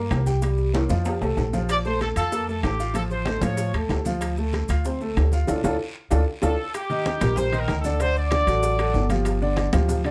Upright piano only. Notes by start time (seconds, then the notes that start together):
Already playing: A#3 A#4
0.26 G4 G5
0.42 G3 G4
0.73 A#3 A#4
0.89 F3 F4
1.21 A3 A4
1.53 F3 F4
1.85 A3 A4
2.17 F4 F5
2.32 A#3 A#4
2.48 A3 A4
2.79 F4 F5
2.94 F3 F4
3.27 A3 A4
3.42 F3 F4
3.74 A3 A4
4.06 F3 F4
4.38 A3 A4
4.69 F4 F5
4.85 C4 C5
5.01 A3 A4
5.33 F4 F5
5.48 D4 F4 A4
5.64 D4 F4 A4
6.10 D4 F4 A4
6.42 D4 F4 A4
6.90 D#3 D#4 D#5
7.21 G3 G4 A#4
7.52 D#3 D#4 D#5
7.84 D3 D4 D5
8.00 D3 D4 D5
8.32 D3 D4 D5
8.48 F#3 F#4 A4
8.79 F#3 F#4 A4
9.10 F3 F4 G4
9.42 D3 D4 D5
9.73 F3 F4 G4
10.04 D3 D4 D5